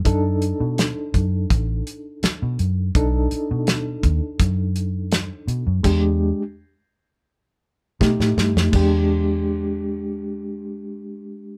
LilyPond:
<<
  \new Staff \with { instrumentName = "Reed electric piano" } { \time 4/4 \key b \dorian \tempo 4 = 83 <d' dis' a'>1 | <d' dis' a'>1 | <gis d' g'>4 r2 <a ees' g'>4 | <gis d' g'>1 | }
  \new Staff \with { instrumentName = "Fingered electric bass" } { \clef bass \time 4/4 \key b \dorian fis,8. b,8 r16 fis,8 a,,8 r8. b,16 fis,8 | b,,8 r16 b,8. dis,16 r16 fis,4. b,16 fis,16 | e,8. r2 r16 b,16 a,16 g,16 f,16 | e,1 | }
  \new DrumStaff \with { instrumentName = "Drums" } \drummode { \time 4/4 <hh bd>8 hh8 <hh sn>8 <hh bd>8 <hh bd>8 hh8 <hh sn>8 hh8 | <hh bd>8 hh8 <hh sn>8 <hh bd>8 <hh bd>8 hh8 <hh sn>8 hh8 | <cymc hh bd>4 r4 r4 <bd sn>16 sn16 sn16 sn16 | <cymc bd>4 r4 r4 r4 | }
>>